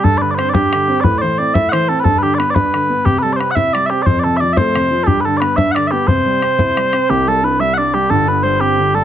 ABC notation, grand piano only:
X:1
M:6/8
L:1/8
Q:3/8=119
K:C
V:1 name="Grand piano" clef=bass
G,, D, C D D, C | A,, E, C E E, C | G,, D, B, D D, B, | C, G, C E G, C |
F,, C, F, A, C, F, | G,, D, B, D D, B, | C, G, C E G, C | [C,,C,] G, D G, D G, |
[G,,,G,,] D, G, C D, G, |]